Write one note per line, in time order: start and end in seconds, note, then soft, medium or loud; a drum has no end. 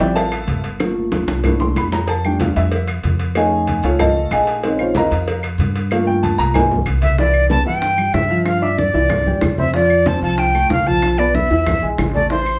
0.00 0.44 A1 medium
0.00 0.21 F3 medium
0.00 0.21 G3 medium
0.00 0.21 C4 medium
0.00 0.22 E4 medium
0.00 0.16 G4 medium
0.00 0.16 D5 medium
0.00 0.14 E5 medium
0.00 0.15 G5 loud
0.00 cowbell medium
0.15 0.61 A4 medium
0.15 0.61 E5 medium
0.15 0.61 F5 medium
0.15 0.60 A5 loud
0.15 cowbell loud
0.15 high conga soft
0.32 cowbell medium
0.32 high conga soft
0.32 claves medium
0.47 1.22 G1 medium
0.47 cowbell medium
0.47 high conga medium
0.64 cowbell medium
0.64 high conga soft
0.80 1.41 A3 medium
0.80 1.41 A#3 medium
0.80 1.41 F4 medium
0.80 cowbell loud
0.80 high bongo loud
0.80 high conga soft
0.80 claves medium
0.96 high conga soft
1.12 cowbell medium
1.12 high bongo medium
1.12 high conga medium
1.27 1.72 C2 medium
1.27 cowbell medium
1.27 high bongo medium
1.44 1.90 A3 medium
1.44 1.90 A#3 medium
1.44 1.90 D4 medium
1.44 1.90 E4 medium
1.44 cowbell loud
1.44 high conga soft
1.44 low conga medium
1.44 claves medium
1.60 1.76 C6 medium
1.60 low bongo medium
1.60 high conga soft
1.76 2.50 F2 medium
1.76 1.92 B5 medium
1.76 cowbell medium
1.76 low bongo medium
1.76 high conga soft
1.76 claves medium
1.92 2.08 A#5 medium
1.92 cowbell medium
1.92 low bongo medium
2.08 2.24 A5 medium
2.08 cowbell loud
2.08 high conga soft
2.24 2.70 G3 medium
2.24 2.70 A3 soft
2.24 2.71 D4 medium
2.24 2.40 G5 medium
2.24 high conga soft
2.24 claves medium
2.40 2.56 F5 medium
2.40 cowbell medium
2.40 high conga loud
2.56 3.01 F2 medium
2.56 2.86 E5 loud
2.56 cowbell medium
2.56 high conga soft
2.72 cowbell loud
2.72 high conga soft
2.88 cowbell medium
2.88 high conga soft
2.88 claves medium
3.03 3.78 F2 medium
3.03 cowbell medium
3.03 high conga medium
3.19 cowbell medium
3.19 high conga soft
3.35 4.59 A3 medium
3.35 4.60 C#4 medium
3.35 4.60 D#4 medium
3.35 3.81 G#4 medium
3.35 3.81 D#5 medium
3.35 3.81 F5 medium
3.35 3.81 G#5 loud
3.35 cowbell loud
3.35 high conga soft
3.35 claves medium
3.52 high conga soft
3.67 cowbell medium
3.67 high conga medium
3.83 4.28 C#2 medium
3.83 4.00 F4 medium
3.83 3.98 A4 medium
3.83 3.99 C#5 medium
3.83 3.98 F5 medium
3.83 cowbell medium
3.83 high conga soft
3.99 4.44 A4 medium
3.99 4.31 D#5 medium
3.99 4.31 F5 medium
3.99 4.44 A5 loud
3.99 cowbell loud
3.99 high conga soft
3.99 low conga medium
3.99 claves medium
4.16 high conga soft
4.31 5.05 A#1 loud
4.31 4.77 G#4 medium
4.31 4.77 D#5 medium
4.31 4.77 F5 medium
4.31 4.76 G#5 medium
4.31 cowbell medium
4.31 high conga soft
4.31 claves medium
4.47 cowbell medium
4.63 5.09 G#3 medium
4.63 5.09 C4 medium
4.63 5.10 C#4 medium
4.63 5.10 D#4 medium
4.63 cowbell loud
4.63 high conga soft
4.79 4.96 F4 medium
4.79 4.96 C5 medium
4.79 4.96 C#5 medium
4.79 4.95 F5 medium
4.79 high conga soft
4.79 claves medium
4.95 5.41 A#4 medium
4.95 5.41 D#5 medium
4.95 5.41 F5 medium
4.95 5.41 A#5 loud
4.95 cowbell medium
4.95 high conga medium
5.11 5.56 F2 loud
5.11 cowbell medium
5.11 high conga soft
5.27 cowbell loud
5.27 high conga soft
5.43 cowbell medium
5.43 high conga soft
5.43 claves medium
5.58 6.33 G2 medium
5.58 cowbell medium
5.58 high conga medium
5.75 cowbell medium
5.75 high conga soft
5.91 6.52 A3 medium
5.91 6.52 A#3 medium
5.91 6.52 F4 medium
5.91 6.07 F5 medium
5.91 cowbell loud
5.91 high conga soft
5.91 claves medium
6.07 6.22 G5 loud
6.07 high conga soft
6.23 6.38 A5 medium
6.23 cowbell medium
6.23 high conga medium
6.38 6.83 C2 medium
6.38 6.54 A#5 loud
6.38 cowbell medium
6.54 6.75 G#3 medium
6.54 6.76 A#3 medium
6.54 6.76 E4 medium
6.54 6.64 G#5 loud
6.54 cowbell loud
6.54 high conga soft
6.54 low conga medium
6.54 claves medium
6.71 high conga soft
6.71 low conga medium
6.86 7.60 C2 loud
6.86 cowbell medium
6.86 high conga soft
6.86 claves medium
7.02 7.17 E5 medium
7.02 cowbell medium
7.02 high conga medium
7.18 7.45 E3 medium
7.18 7.45 E4 medium
7.18 7.49 D5 medium
7.18 7.45 E5 medium
7.18 high bongo medium
7.34 high conga soft
7.34 claves medium
7.49 7.63 B3 medium
7.49 7.63 B4 medium
7.49 7.65 A5 medium
7.49 7.63 B5 medium
7.49 high bongo medium
7.49 high conga medium
7.66 8.11 G2 medium
7.66 7.92 E3 medium
7.66 7.93 E4 medium
7.66 7.93 E5 medium
7.66 8.15 G5 medium
7.66 high conga soft
7.82 high bongo medium
7.82 high conga soft
7.98 8.24 G3 medium
7.98 8.24 G4 medium
7.98 8.24 G5 medium
7.98 high conga soft
7.98 claves medium
8.14 8.88 G2 medium
8.14 8.45 E5 medium
8.14 high bongo medium
8.14 low bongo medium
8.14 high conga medium
8.29 8.56 F3 medium
8.29 8.56 F4 medium
8.29 8.57 F5 medium
8.46 8.64 F5 medium
8.46 high bongo medium
8.46 high conga soft
8.46 claves medium
8.62 8.88 D4 medium
8.62 8.88 D5 medium
8.62 8.80 E5 medium
8.62 8.89 D6 medium
8.62 high bongo soft
8.62 high conga soft
8.78 9.58 D5 medium
8.78 high bongo medium
8.78 high conga medium
8.94 9.24 C2 medium
8.94 9.20 E3 medium
8.94 9.21 E4 medium
8.94 9.21 E5 medium
8.94 high bongo soft
8.94 high conga soft
9.10 high bongo medium
9.10 high conga soft
9.10 low conga medium
9.10 claves medium
9.26 9.41 E2 medium
9.26 9.52 G3 medium
9.26 9.52 G4 medium
9.26 9.53 G5 medium
9.26 high conga soft
9.26 low conga medium
9.41 10.17 F2 loud
9.41 high bongo medium
9.41 low bongo medium
9.41 high conga medium
9.41 claves medium
9.58 9.71 C4 medium
9.58 9.72 C5 medium
9.58 9.73 E5 medium
9.58 9.72 C6 medium
9.58 high bongo soft
9.58 high conga medium
9.74 10.00 F3 medium
9.74 10.00 F4 medium
9.74 10.09 D5 medium
9.74 10.01 F5 medium
9.74 high bongo medium
9.74 high conga soft
9.90 high conga soft
9.90 claves medium
10.06 10.19 C4 medium
10.06 10.19 C5 medium
10.06 10.22 A5 medium
10.06 10.20 C6 medium
10.06 high bongo medium
10.06 high conga medium
10.22 10.66 C2 medium
10.22 10.49 F3 medium
10.22 10.49 F4 medium
10.22 10.49 F5 medium
10.22 10.41 A5 medium
10.22 high conga soft
10.38 10.71 G5 loud
10.38 high bongo medium
10.54 10.80 A3 medium
10.54 10.81 A4 medium
10.54 10.81 A5 medium
10.54 high conga soft
10.54 claves medium
10.70 11.44 B1 medium
10.70 10.88 F5 medium
10.70 high bongo medium
10.70 low bongo medium
10.70 high conga medium
10.86 11.12 F3 medium
10.86 11.12 F4 medium
10.86 11.13 F5 medium
10.86 11.20 A5 loud
10.86 high conga medium
11.02 high bongo medium
11.02 claves medium
11.18 11.44 B3 medium
11.18 11.45 B4 medium
11.18 11.36 D5 medium
11.18 11.45 B5 medium
11.18 high bongo soft
11.34 11.87 E5 medium
11.34 high bongo medium
11.34 high conga medium
11.50 11.80 E2 medium
11.50 11.76 E3 medium
11.50 11.77 E4 medium
11.50 11.77 E5 medium
11.50 high bongo soft
11.67 high bongo medium
11.67 high conga soft
11.67 low conga medium
11.67 claves medium
11.82 11.97 A#1 medium
11.82 12.09 G#3 medium
11.82 12.09 G#4 medium
11.82 12.09 G#5 medium
11.82 high conga soft
11.98 12.59 A1 medium
11.98 high bongo medium
11.98 low bongo medium
11.98 high conga medium
11.98 claves medium
12.14 12.28 A3 medium
12.14 12.28 A4 medium
12.14 12.29 D5 medium
12.14 12.28 A5 medium
12.14 high bongo soft
12.14 high conga medium
12.30 12.56 E3 medium
12.30 12.56 E4 medium
12.30 12.59 C5 loud
12.30 12.56 E5 medium
12.30 high bongo medium
12.30 high conga soft
12.46 high conga soft
12.46 claves medium